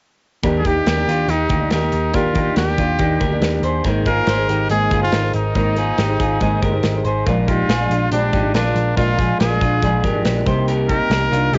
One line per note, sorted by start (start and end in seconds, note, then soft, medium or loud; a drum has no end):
0.43 0.78 D#2 loud
0.43 0.62 D#3 medium
0.43 0.63 A#3 medium
0.43 0.64 D4 medium
0.43 0.64 G4 medium
0.43 0.65 G4 medium
0.43 0.65 A#4 medium
0.43 kick loud
0.43 closed hi-hat medium
0.59 0.68 G#4 medium
0.64 0.96 D#3 medium
0.64 0.97 A#3 medium
0.64 0.96 D4 medium
0.64 0.87 D#4 medium
0.64 0.86 G4 medium
0.64 0.95 G4 medium
0.64 1.31 G4 loud
0.64 kick medium
0.64 closed hi-hat medium
0.86 1.04 D#2 medium
0.86 1.08 G4 medium
0.86 1.08 A#4 medium
0.86 snare loud
0.86 closed hi-hat medium
0.96 1.28 A#3 soft
0.96 1.29 D4 soft
0.96 1.28 G4 soft
1.08 1.25 D#2 medium
1.08 1.30 D4 soft
1.08 1.29 F4 medium
1.08 closed hi-hat medium
1.28 1.46 D#2 medium
1.28 1.61 D#3 medium
1.28 1.61 A#3 medium
1.28 1.72 D#4 medium
1.28 1.50 D#4 soft
1.28 1.49 G4 medium
1.28 1.59 G4 medium
1.28 closed hi-hat medium
1.49 1.67 D2 medium
1.49 1.72 D#4 medium
1.49 1.72 G4 medium
1.49 kick medium
1.49 closed hi-hat medium
1.60 1.83 A#3 soft
1.60 1.83 D4 soft
1.60 1.80 G4 medium
1.71 1.89 D#2 medium
1.71 2.17 D#4 medium
1.71 2.12 G4 soft
1.71 2.12 A#4 medium
1.71 snare medium
1.71 closed hi-hat medium
1.81 2.13 A#3 soft
1.81 2.14 G4 medium
1.92 2.10 D#2 medium
1.92 closed hi-hat medium
2.13 2.49 D#2 loud
2.13 2.34 D#3 medium
2.13 2.34 A#3 medium
2.13 2.36 D4 medium
2.13 2.56 F4 medium
2.13 2.36 G4 medium
2.13 2.35 G4 medium
2.13 2.36 A#4 medium
2.13 kick medium
2.13 closed hi-hat medium
2.35 2.67 D#3 medium
2.35 2.68 A#3 medium
2.35 2.68 D4 medium
2.35 2.57 D#4 soft
2.35 2.56 G4 medium
2.35 2.66 G4 medium
2.35 kick medium
2.35 closed hi-hat medium
2.56 2.74 D#2 medium
2.56 3.38 G4 medium
2.56 2.78 G4 soft
2.56 2.78 A#4 medium
2.56 snare loud
2.56 closed hi-hat medium
2.67 2.99 A#3 soft
2.67 2.99 D4 soft
2.67 3.00 G4 medium
2.78 2.96 D#2 medium
2.78 3.00 D4 medium
2.78 2.99 F4 medium
2.78 kick medium
2.78 closed hi-hat medium
2.99 3.17 D#2 medium
2.99 3.32 D#3 medium
2.99 3.32 A#3 medium
2.99 3.32 D4 medium
2.99 3.21 D#4 medium
2.99 3.20 G4 medium
2.99 3.30 G4 medium
2.99 kick medium
2.99 closed hi-hat medium
3.20 3.38 D2 medium
3.20 3.61 G4 medium
3.20 3.61 A#4 medium
3.20 kick medium
3.20 closed hi-hat medium
3.32 3.54 A#3 soft
3.32 3.54 D4 medium
3.32 3.52 G4 medium
3.41 3.59 D#2 medium
3.41 snare medium
3.41 closed hi-hat medium
3.54 3.85 A#3 soft
3.54 3.86 D4 soft
3.54 3.85 G4 medium
3.62 3.80 D#2 medium
3.62 3.86 G#4 soft
3.62 3.85 C5 medium
3.62 closed hi-hat medium
3.84 4.20 G#1 loud
3.84 4.07 G#3 medium
3.84 4.05 A#3 medium
3.84 4.07 D#4 medium
3.84 4.06 D#4 medium
3.84 4.07 G#4 medium
3.84 4.07 A#4 medium
3.84 4.08 C5 medium
3.84 kick loud
3.84 closed hi-hat medium
4.06 4.38 A#3 medium
4.06 4.39 D#4 medium
4.06 4.28 F4 medium
4.06 4.28 G#4 medium
4.06 4.38 G#4 medium
4.06 4.67 A#4 medium
4.06 4.36 C5 medium
4.06 kick medium
4.06 closed hi-hat medium
4.27 4.45 G#1 medium
4.27 4.50 G#4 medium
4.27 4.49 C5 medium
4.27 snare medium
4.27 closed hi-hat medium
4.38 4.70 D#4 soft
4.38 4.70 G#4 medium
4.38 4.70 C5 medium
4.49 4.66 G#1 medium
4.49 4.71 D#4 medium
4.49 4.71 G4 medium
4.49 closed hi-hat medium
4.70 4.88 G#1 medium
4.70 5.02 G#3 medium
4.70 5.03 A#3 medium
4.70 5.03 D#4 medium
4.70 4.93 D#4 medium
4.70 5.01 G#4 medium
4.70 4.91 G#4 medium
4.70 5.02 G#4 medium
4.70 5.01 C5 medium
4.70 closed hi-hat medium
4.91 5.09 G1 medium
4.91 5.14 F4 medium
4.91 5.13 G#4 medium
4.91 kick medium
4.91 closed hi-hat medium
5.02 5.24 D#4 soft
5.02 5.33 F4 medium
5.02 5.23 G#4 soft
5.02 5.22 C5 medium
5.12 5.30 G#1 medium
5.12 5.54 D#4 soft
5.12 5.54 A#4 medium
5.12 snare medium
5.12 closed hi-hat medium
5.23 5.54 D#4 soft
5.23 5.54 G#4 medium
5.23 5.55 C5 medium
5.34 5.52 G#1 medium
5.34 7.02 D#4 medium
5.34 closed hi-hat medium
5.55 5.91 G#1 loud
5.55 5.77 G#3 medium
5.55 5.75 A#3 medium
5.55 5.75 D#4 medium
5.55 5.78 D#4 medium
5.55 5.76 G#4 medium
5.55 5.77 A#4 medium
5.55 5.77 C5 medium
5.55 kick loud
5.55 closed hi-hat medium
5.76 6.09 A#3 medium
5.76 6.09 D#4 medium
5.76 5.99 F4 medium
5.76 6.08 G#4 medium
5.76 5.98 G#4 medium
5.76 6.07 C5 medium
5.76 closed hi-hat medium
5.98 6.16 G#1 loud
5.98 6.20 D#4 medium
5.98 6.20 G4 medium
5.98 snare medium
5.98 closed hi-hat medium
6.08 6.40 D#4 soft
6.08 6.40 G#4 medium
6.08 6.41 C5 medium
6.20 6.37 G#1 medium
6.20 6.42 F4 medium
6.20 6.40 G#4 medium
6.20 kick medium
6.20 closed hi-hat medium
6.40 6.59 G#1 medium
6.40 6.73 G#3 medium
6.40 6.73 A#3 medium
6.40 6.73 D#4 medium
6.40 6.62 D#4 medium
6.40 6.62 G#4 medium
6.40 6.73 G#4 medium
6.40 6.72 C5 medium
6.40 kick medium
6.40 closed hi-hat medium
6.62 6.80 G1 medium
6.62 7.03 G4 medium
6.62 7.02 A#4 medium
6.62 kick medium
6.62 closed hi-hat medium
6.73 6.96 D#4 soft
6.73 6.95 G#4 soft
6.73 6.95 C5 medium
6.83 7.02 G#1 medium
6.83 snare medium
6.83 closed hi-hat medium
6.96 7.28 D#4 soft
6.96 7.28 G#4 soft
6.96 7.27 C5 medium
7.04 7.23 G#1 medium
7.04 7.27 G#4 medium
7.04 7.26 C5 medium
7.04 closed hi-hat medium
7.26 7.61 A#1 loud
7.26 7.47 A#2 medium
7.26 7.48 F3 medium
7.26 7.48 G#3 medium
7.26 7.49 D4 medium
7.26 7.47 F4 medium
7.26 7.48 A#4 medium
7.26 kick loud
7.26 closed hi-hat medium
7.48 7.80 A#2 medium
7.48 7.80 F3 medium
7.48 7.80 G#3 medium
7.48 7.79 D4 medium
7.48 7.70 D#4 medium
7.48 8.08 F4 medium
7.48 7.69 G4 medium
7.48 kick medium
7.48 closed hi-hat medium
7.69 7.87 A#1 medium
7.69 7.90 F4 medium
7.69 7.91 G#4 medium
7.69 snare loud
7.69 closed hi-hat medium
7.80 8.11 F3 soft
7.80 8.12 G#3 soft
7.80 8.12 D4 medium
7.90 8.08 A#1 medium
7.90 8.12 D4 medium
7.90 8.12 F4 medium
7.90 closed hi-hat medium
8.12 8.29 A#1 medium
8.12 8.44 A#2 medium
8.12 8.44 F3 medium
8.12 8.43 G#3 medium
8.12 8.52 D4 medium
8.12 8.34 D4 soft
8.12 8.42 D4 medium
8.12 8.32 G4 medium
8.12 closed hi-hat medium
8.33 8.51 G#1 medium
8.33 8.55 D#4 medium
8.33 8.54 G4 medium
8.33 kick medium
8.33 closed hi-hat medium
8.43 8.66 F3 soft
8.43 8.65 G#3 soft
8.43 8.64 D4 soft
8.54 8.72 A#1 medium
8.54 8.95 D4 medium
8.54 8.95 F4 medium
8.54 8.95 A#4 medium
8.54 snare loud
8.54 closed hi-hat medium
8.65 8.96 F3 soft
8.65 8.96 G#3 soft
8.65 8.97 D4 medium
8.75 8.93 A#1 medium
8.75 closed hi-hat medium
8.97 9.32 A#1 loud
8.97 9.17 A#2 medium
8.97 9.18 F3 medium
8.97 9.19 G#3 medium
8.97 9.19 D4 medium
8.97 9.37 F4 medium
8.97 9.18 F4 medium
8.97 9.18 A#4 medium
8.97 kick loud
8.97 closed hi-hat medium
9.18 9.51 A#2 medium
9.18 9.51 F3 medium
9.18 9.50 G#3 medium
9.18 9.49 D4 medium
9.18 9.40 F4 medium
9.18 9.40 G#4 medium
9.18 kick medium
9.18 closed hi-hat medium
9.40 9.58 A#1 medium
9.40 9.60 F4 medium
9.40 10.21 G#4 medium
9.40 9.61 A#4 medium
9.40 snare loud
9.40 closed hi-hat medium
9.50 9.82 F3 soft
9.50 9.82 G#3 soft
9.50 9.82 D4 soft
9.61 9.79 A#1 medium
9.61 9.83 D4 medium
9.61 9.83 F4 medium
9.61 kick medium
9.61 closed hi-hat medium
9.82 10.04 A#1 medium
9.82 10.15 A#2 medium
9.82 10.15 F3 medium
9.82 10.14 G#3 medium
9.82 10.12 D4 medium
9.82 10.05 F4 medium
9.82 10.04 G#4 medium
9.82 kick medium
9.82 closed hi-hat medium
10.04 10.21 G#1 medium
10.04 10.45 G4 medium
10.04 10.44 A#4 medium
10.04 kick medium
10.04 closed hi-hat medium
10.13 10.36 F3 soft
10.13 10.35 G#3 medium
10.13 10.34 D4 medium
10.25 10.43 A#1 medium
10.25 snare loud
10.25 closed hi-hat medium
10.35 10.46 F3 medium
10.35 10.46 G#3 soft
10.35 10.46 D4 medium
10.45 10.99 C2 medium
10.45 10.88 C3 medium
10.45 10.90 G3 medium
10.45 10.90 A#3 medium
10.45 10.91 D#4 medium
10.45 10.68 G4 soft
10.45 10.68 C5 medium
10.45 kick medium
10.45 closed hi-hat medium
10.68 10.88 G4 medium
10.68 10.89 A#4 medium
10.68 closed hi-hat medium
10.89 11.21 C3 medium
10.89 11.22 G3 medium
10.89 11.21 A#3 medium
10.89 11.11 D#4 medium
10.89 11.20 D#4 medium
10.89 11.10 G4 medium
10.89 11.56 A#4 loud
10.89 kick medium
10.89 closed hi-hat medium
11.10 11.28 C2 medium
11.10 11.31 G4 medium
11.10 11.32 A#4 medium
11.10 snare medium
11.10 closed hi-hat medium
11.21 11.53 G3 soft
11.21 11.54 A#3 soft
11.21 11.53 D#4 soft
11.31 11.49 C2 medium
11.31 11.54 D4 medium
11.31 11.53 F4 medium
11.31 closed hi-hat medium
11.52 11.58 C2 loud
11.52 11.58 C3 medium
11.52 11.58 G3 medium
11.52 11.58 D#4 medium
11.52 11.58 G4 medium
11.52 closed hi-hat medium